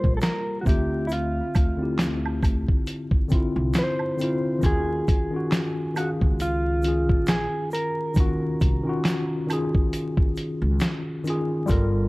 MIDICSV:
0, 0, Header, 1, 5, 480
1, 0, Start_track
1, 0, Tempo, 882353
1, 600, Time_signature, 4, 2, 24, 8
1, 6574, End_track
2, 0, Start_track
2, 0, Title_t, "Clean electric guitar"
2, 0, Program_c, 0, 27
2, 0, Note_on_c, 0, 72, 92
2, 90, Note_off_c, 0, 72, 0
2, 92, Note_on_c, 0, 69, 70
2, 120, Note_off_c, 0, 69, 0
2, 122, Note_on_c, 0, 70, 89
2, 313, Note_off_c, 0, 70, 0
2, 334, Note_on_c, 0, 66, 62
2, 364, Note_off_c, 0, 66, 0
2, 371, Note_on_c, 0, 67, 75
2, 578, Note_off_c, 0, 67, 0
2, 582, Note_on_c, 0, 64, 59
2, 608, Note_off_c, 0, 64, 0
2, 612, Note_on_c, 0, 65, 79
2, 1064, Note_off_c, 0, 65, 0
2, 2059, Note_on_c, 0, 72, 98
2, 2533, Note_off_c, 0, 72, 0
2, 2535, Note_on_c, 0, 68, 97
2, 3250, Note_on_c, 0, 66, 92
2, 3269, Note_off_c, 0, 68, 0
2, 3313, Note_off_c, 0, 66, 0
2, 3490, Note_on_c, 0, 65, 92
2, 3967, Note_on_c, 0, 68, 91
2, 3979, Note_off_c, 0, 65, 0
2, 4204, Note_off_c, 0, 68, 0
2, 4206, Note_on_c, 0, 70, 84
2, 5621, Note_off_c, 0, 70, 0
2, 6574, End_track
3, 0, Start_track
3, 0, Title_t, "Tine electric piano"
3, 0, Program_c, 1, 4
3, 0, Control_c, 1, 64, 127
3, 0, Note_on_c, 1, 55, 64
3, 0, Note_on_c, 1, 65, 69
3, 0, Note_on_c, 1, 67, 60
3, 0, Note_on_c, 1, 69, 56
3, 0, Note_on_c, 1, 70, 75
3, 0, Note_on_c, 1, 72, 67
3, 344, Note_on_c, 1, 50, 79
3, 354, Note_on_c, 1, 60, 75
3, 358, Note_off_c, 1, 55, 0
3, 365, Note_off_c, 1, 65, 0
3, 366, Note_on_c, 1, 76, 72
3, 367, Note_off_c, 1, 72, 0
3, 367, Control_c, 1, 64, 0
3, 370, Note_off_c, 1, 67, 0
3, 372, Note_off_c, 1, 69, 0
3, 375, Note_off_c, 1, 70, 0
3, 378, Note_on_c, 1, 65, 84
3, 451, Control_c, 1, 64, 127
3, 832, Note_off_c, 1, 50, 0
3, 837, Note_off_c, 1, 60, 0
3, 843, Note_off_c, 1, 76, 0
3, 849, Note_off_c, 1, 65, 0
3, 962, Note_on_c, 1, 50, 77
3, 973, Note_on_c, 1, 60, 67
3, 984, Note_on_c, 1, 64, 64
3, 996, Note_on_c, 1, 67, 77
3, 1627, Note_off_c, 1, 50, 0
3, 1632, Note_off_c, 1, 60, 0
3, 1638, Note_off_c, 1, 64, 0
3, 1643, Note_off_c, 1, 67, 0
3, 1785, Note_on_c, 1, 50, 80
3, 1796, Note_on_c, 1, 60, 78
3, 1806, Note_on_c, 1, 64, 74
3, 1818, Note_on_c, 1, 65, 95
3, 2184, Note_off_c, 1, 50, 0
3, 2189, Note_off_c, 1, 60, 0
3, 2195, Note_off_c, 1, 64, 0
3, 2200, Note_off_c, 1, 65, 0
3, 2270, Note_on_c, 1, 50, 83
3, 2282, Note_on_c, 1, 60, 75
3, 2292, Note_on_c, 1, 64, 67
3, 2304, Note_on_c, 1, 65, 93
3, 2471, Note_off_c, 1, 50, 0
3, 2477, Note_off_c, 1, 60, 0
3, 2482, Note_off_c, 1, 64, 0
3, 2488, Note_off_c, 1, 65, 0
3, 2496, Note_on_c, 1, 51, 90
3, 2508, Note_on_c, 1, 61, 79
3, 2518, Note_on_c, 1, 65, 91
3, 2527, Control_c, 1, 64, 0
3, 2530, Note_on_c, 1, 66, 95
3, 2627, Control_c, 1, 64, 127
3, 2798, Note_off_c, 1, 51, 0
3, 2804, Note_off_c, 1, 61, 0
3, 2809, Note_off_c, 1, 65, 0
3, 2815, Note_off_c, 1, 66, 0
3, 2884, Note_on_c, 1, 51, 73
3, 2895, Note_on_c, 1, 61, 68
3, 2906, Note_on_c, 1, 65, 67
3, 2917, Note_on_c, 1, 66, 83
3, 3169, Note_off_c, 1, 51, 0
3, 3174, Note_off_c, 1, 61, 0
3, 3180, Note_off_c, 1, 65, 0
3, 3185, Note_off_c, 1, 66, 0
3, 3232, Note_on_c, 1, 51, 63
3, 3243, Note_on_c, 1, 61, 56
3, 3254, Note_on_c, 1, 77, 62
3, 3266, Note_on_c, 1, 68, 74
3, 3627, Note_off_c, 1, 51, 0
3, 3633, Note_off_c, 1, 61, 0
3, 3638, Note_off_c, 1, 77, 0
3, 3644, Note_off_c, 1, 68, 0
3, 3711, Note_on_c, 1, 51, 67
3, 3721, Note_on_c, 1, 61, 59
3, 3732, Note_on_c, 1, 65, 64
3, 3743, Note_on_c, 1, 68, 68
3, 4296, Note_off_c, 1, 51, 0
3, 4301, Note_off_c, 1, 61, 0
3, 4306, Note_off_c, 1, 65, 0
3, 4312, Note_off_c, 1, 68, 0
3, 4428, Note_on_c, 1, 51, 96
3, 4440, Note_on_c, 1, 61, 90
3, 4451, Note_on_c, 1, 65, 80
3, 4462, Note_on_c, 1, 66, 108
3, 4724, Note_off_c, 1, 51, 0
3, 4730, Note_off_c, 1, 61, 0
3, 4735, Note_off_c, 1, 65, 0
3, 4741, Note_off_c, 1, 66, 0
3, 4804, Note_on_c, 1, 51, 90
3, 4814, Note_on_c, 1, 61, 82
3, 4826, Note_on_c, 1, 65, 85
3, 4837, Note_on_c, 1, 66, 94
3, 5089, Note_off_c, 1, 51, 0
3, 5094, Note_off_c, 1, 61, 0
3, 5100, Note_off_c, 1, 65, 0
3, 5105, Note_off_c, 1, 66, 0
3, 5150, Note_on_c, 1, 51, 81
3, 5160, Note_on_c, 1, 61, 79
3, 5173, Note_on_c, 1, 65, 77
3, 5184, Note_on_c, 1, 68, 95
3, 5919, Note_off_c, 1, 51, 0
3, 5925, Note_off_c, 1, 61, 0
3, 5931, Note_off_c, 1, 65, 0
3, 5936, Note_off_c, 1, 68, 0
3, 6113, Note_on_c, 1, 51, 91
3, 6124, Note_on_c, 1, 61, 74
3, 6136, Note_on_c, 1, 65, 80
3, 6146, Note_on_c, 1, 68, 94
3, 6312, Note_off_c, 1, 51, 0
3, 6318, Note_off_c, 1, 61, 0
3, 6324, Note_off_c, 1, 65, 0
3, 6329, Note_off_c, 1, 68, 0
3, 6343, Note_on_c, 1, 55, 119
3, 6353, Note_on_c, 1, 65, 111
3, 6366, Control_c, 1, 64, 0
3, 6366, Note_on_c, 1, 69, 89
3, 6377, Note_on_c, 1, 70, 127
3, 6449, Control_c, 1, 64, 127
3, 6574, Note_off_c, 1, 55, 0
3, 6574, Note_off_c, 1, 65, 0
3, 6574, Note_off_c, 1, 69, 0
3, 6574, Note_off_c, 1, 70, 0
3, 6574, End_track
4, 0, Start_track
4, 0, Title_t, "Upright bass"
4, 0, Program_c, 2, 32
4, 23, Note_on_c, 2, 34, 83
4, 106, Note_off_c, 2, 34, 0
4, 362, Note_on_c, 2, 38, 104
4, 756, Note_off_c, 2, 38, 0
4, 848, Note_on_c, 2, 38, 96
4, 1436, Note_off_c, 2, 38, 0
4, 1936, Note_on_c, 2, 36, 95
4, 2022, Note_off_c, 2, 36, 0
4, 2521, Note_on_c, 2, 39, 110
4, 2718, Note_off_c, 2, 39, 0
4, 3383, Note_on_c, 2, 37, 90
4, 3860, Note_off_c, 2, 37, 0
4, 3860, Note_on_c, 2, 34, 100
4, 4055, Note_off_c, 2, 34, 0
4, 4443, Note_on_c, 2, 39, 103
4, 4640, Note_off_c, 2, 39, 0
4, 4687, Note_on_c, 2, 36, 79
4, 4794, Note_off_c, 2, 36, 0
4, 5775, Note_on_c, 2, 37, 93
4, 5862, Note_off_c, 2, 37, 0
4, 6364, Note_on_c, 2, 31, 104
4, 6560, Note_off_c, 2, 31, 0
4, 6574, End_track
5, 0, Start_track
5, 0, Title_t, "Drums"
5, 21, Note_on_c, 9, 36, 82
5, 75, Note_off_c, 9, 36, 0
5, 116, Note_on_c, 9, 82, 67
5, 123, Note_on_c, 9, 39, 85
5, 124, Note_on_c, 9, 42, 74
5, 125, Note_on_c, 9, 38, 109
5, 170, Note_off_c, 9, 82, 0
5, 178, Note_off_c, 9, 39, 0
5, 178, Note_off_c, 9, 42, 0
5, 180, Note_off_c, 9, 38, 0
5, 361, Note_on_c, 9, 36, 102
5, 361, Note_on_c, 9, 82, 45
5, 376, Note_on_c, 9, 42, 62
5, 415, Note_off_c, 9, 36, 0
5, 415, Note_off_c, 9, 82, 0
5, 431, Note_off_c, 9, 42, 0
5, 594, Note_on_c, 9, 82, 66
5, 608, Note_on_c, 9, 42, 72
5, 648, Note_off_c, 9, 82, 0
5, 662, Note_off_c, 9, 42, 0
5, 841, Note_on_c, 9, 76, 58
5, 841, Note_on_c, 9, 82, 41
5, 845, Note_on_c, 9, 36, 96
5, 848, Note_on_c, 9, 42, 65
5, 896, Note_off_c, 9, 76, 0
5, 896, Note_off_c, 9, 82, 0
5, 900, Note_off_c, 9, 36, 0
5, 902, Note_off_c, 9, 42, 0
5, 1079, Note_on_c, 9, 39, 80
5, 1081, Note_on_c, 9, 38, 107
5, 1083, Note_on_c, 9, 42, 82
5, 1086, Note_on_c, 9, 82, 66
5, 1134, Note_off_c, 9, 39, 0
5, 1136, Note_off_c, 9, 38, 0
5, 1138, Note_off_c, 9, 42, 0
5, 1141, Note_off_c, 9, 82, 0
5, 1227, Note_on_c, 9, 76, 67
5, 1282, Note_off_c, 9, 76, 0
5, 1320, Note_on_c, 9, 36, 86
5, 1322, Note_on_c, 9, 76, 62
5, 1322, Note_on_c, 9, 82, 43
5, 1331, Note_on_c, 9, 42, 61
5, 1374, Note_off_c, 9, 36, 0
5, 1377, Note_off_c, 9, 76, 0
5, 1377, Note_off_c, 9, 82, 0
5, 1385, Note_off_c, 9, 42, 0
5, 1461, Note_on_c, 9, 36, 82
5, 1515, Note_off_c, 9, 36, 0
5, 1561, Note_on_c, 9, 82, 61
5, 1562, Note_on_c, 9, 42, 72
5, 1615, Note_off_c, 9, 82, 0
5, 1617, Note_off_c, 9, 42, 0
5, 1693, Note_on_c, 9, 36, 91
5, 1747, Note_off_c, 9, 36, 0
5, 1792, Note_on_c, 9, 82, 41
5, 1804, Note_on_c, 9, 36, 83
5, 1804, Note_on_c, 9, 42, 62
5, 1846, Note_off_c, 9, 82, 0
5, 1858, Note_off_c, 9, 36, 0
5, 1858, Note_off_c, 9, 42, 0
5, 2033, Note_on_c, 9, 82, 67
5, 2038, Note_on_c, 9, 39, 83
5, 2039, Note_on_c, 9, 42, 81
5, 2040, Note_on_c, 9, 38, 103
5, 2087, Note_off_c, 9, 82, 0
5, 2093, Note_off_c, 9, 39, 0
5, 2093, Note_off_c, 9, 42, 0
5, 2095, Note_off_c, 9, 38, 0
5, 2172, Note_on_c, 9, 76, 54
5, 2226, Note_off_c, 9, 76, 0
5, 2278, Note_on_c, 9, 82, 46
5, 2292, Note_on_c, 9, 42, 63
5, 2333, Note_off_c, 9, 82, 0
5, 2347, Note_off_c, 9, 42, 0
5, 2513, Note_on_c, 9, 82, 58
5, 2520, Note_on_c, 9, 36, 113
5, 2527, Note_on_c, 9, 42, 75
5, 2568, Note_off_c, 9, 82, 0
5, 2574, Note_off_c, 9, 36, 0
5, 2581, Note_off_c, 9, 42, 0
5, 2761, Note_on_c, 9, 82, 41
5, 2764, Note_on_c, 9, 36, 99
5, 2767, Note_on_c, 9, 42, 67
5, 2815, Note_off_c, 9, 82, 0
5, 2818, Note_off_c, 9, 36, 0
5, 2821, Note_off_c, 9, 42, 0
5, 3000, Note_on_c, 9, 39, 87
5, 3003, Note_on_c, 9, 38, 106
5, 3005, Note_on_c, 9, 42, 81
5, 3005, Note_on_c, 9, 82, 68
5, 3055, Note_off_c, 9, 39, 0
5, 3057, Note_off_c, 9, 38, 0
5, 3059, Note_off_c, 9, 42, 0
5, 3060, Note_off_c, 9, 82, 0
5, 3244, Note_on_c, 9, 76, 66
5, 3244, Note_on_c, 9, 82, 46
5, 3249, Note_on_c, 9, 42, 61
5, 3298, Note_off_c, 9, 76, 0
5, 3298, Note_off_c, 9, 82, 0
5, 3303, Note_off_c, 9, 42, 0
5, 3381, Note_on_c, 9, 36, 88
5, 3435, Note_off_c, 9, 36, 0
5, 3481, Note_on_c, 9, 82, 69
5, 3482, Note_on_c, 9, 42, 73
5, 3536, Note_off_c, 9, 42, 0
5, 3536, Note_off_c, 9, 82, 0
5, 3711, Note_on_c, 9, 82, 45
5, 3723, Note_on_c, 9, 42, 69
5, 3765, Note_off_c, 9, 82, 0
5, 3777, Note_off_c, 9, 42, 0
5, 3859, Note_on_c, 9, 36, 85
5, 3913, Note_off_c, 9, 36, 0
5, 3953, Note_on_c, 9, 82, 71
5, 3960, Note_on_c, 9, 39, 91
5, 3961, Note_on_c, 9, 42, 86
5, 3962, Note_on_c, 9, 38, 108
5, 4007, Note_off_c, 9, 82, 0
5, 4014, Note_off_c, 9, 39, 0
5, 4015, Note_off_c, 9, 42, 0
5, 4016, Note_off_c, 9, 38, 0
5, 4195, Note_on_c, 9, 82, 49
5, 4214, Note_on_c, 9, 42, 65
5, 4250, Note_off_c, 9, 82, 0
5, 4268, Note_off_c, 9, 42, 0
5, 4431, Note_on_c, 9, 82, 68
5, 4441, Note_on_c, 9, 36, 109
5, 4446, Note_on_c, 9, 42, 75
5, 4486, Note_off_c, 9, 82, 0
5, 4495, Note_off_c, 9, 36, 0
5, 4500, Note_off_c, 9, 42, 0
5, 4681, Note_on_c, 9, 82, 41
5, 4685, Note_on_c, 9, 36, 97
5, 4687, Note_on_c, 9, 42, 66
5, 4735, Note_off_c, 9, 82, 0
5, 4739, Note_off_c, 9, 36, 0
5, 4742, Note_off_c, 9, 42, 0
5, 4920, Note_on_c, 9, 39, 81
5, 4922, Note_on_c, 9, 38, 106
5, 4924, Note_on_c, 9, 42, 89
5, 4927, Note_on_c, 9, 82, 69
5, 4975, Note_off_c, 9, 39, 0
5, 4977, Note_off_c, 9, 38, 0
5, 4979, Note_off_c, 9, 42, 0
5, 4982, Note_off_c, 9, 82, 0
5, 5168, Note_on_c, 9, 76, 66
5, 5168, Note_on_c, 9, 82, 47
5, 5171, Note_on_c, 9, 42, 62
5, 5222, Note_off_c, 9, 76, 0
5, 5222, Note_off_c, 9, 82, 0
5, 5225, Note_off_c, 9, 42, 0
5, 5302, Note_on_c, 9, 36, 92
5, 5357, Note_off_c, 9, 36, 0
5, 5402, Note_on_c, 9, 42, 77
5, 5405, Note_on_c, 9, 82, 67
5, 5457, Note_off_c, 9, 42, 0
5, 5459, Note_off_c, 9, 82, 0
5, 5534, Note_on_c, 9, 36, 92
5, 5589, Note_off_c, 9, 36, 0
5, 5636, Note_on_c, 9, 82, 45
5, 5644, Note_on_c, 9, 42, 68
5, 5690, Note_off_c, 9, 82, 0
5, 5698, Note_off_c, 9, 42, 0
5, 5875, Note_on_c, 9, 82, 73
5, 5881, Note_on_c, 9, 39, 88
5, 5882, Note_on_c, 9, 42, 90
5, 5883, Note_on_c, 9, 38, 112
5, 5930, Note_off_c, 9, 82, 0
5, 5935, Note_off_c, 9, 39, 0
5, 5936, Note_off_c, 9, 42, 0
5, 5937, Note_off_c, 9, 38, 0
5, 6119, Note_on_c, 9, 82, 48
5, 6133, Note_on_c, 9, 42, 62
5, 6173, Note_off_c, 9, 82, 0
5, 6188, Note_off_c, 9, 42, 0
5, 6353, Note_on_c, 9, 82, 68
5, 6362, Note_on_c, 9, 36, 110
5, 6369, Note_on_c, 9, 42, 76
5, 6407, Note_off_c, 9, 82, 0
5, 6417, Note_off_c, 9, 36, 0
5, 6423, Note_off_c, 9, 42, 0
5, 6574, End_track
0, 0, End_of_file